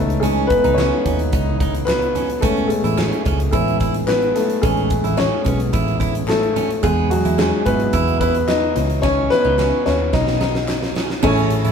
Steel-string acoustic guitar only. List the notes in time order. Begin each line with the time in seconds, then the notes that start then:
0.23 C#4
0.64 D#4
0.78 C#4
1.06 C#4
1.33 D#4
1.61 D#4
2.15 C#4
2.42 C#4
2.84 E4
2.98 C#4
3.25 C#4
3.53 E4
3.80 E4
4.63 C#4
5.04 E4
5.17 C#4
5.44 C#4
5.73 E4
6.00 E4
6.56 C#4
6.83 B3
7.25 E4
7.38 C#4
7.66 C#4
7.93 E4
8.21 E4
9.03 C#4
9.45 D#4
9.59 C#4
9.86 C#4
10.13 D#4
10.41 D#4
10.95 C#4
11.23 C#4
11.64 E4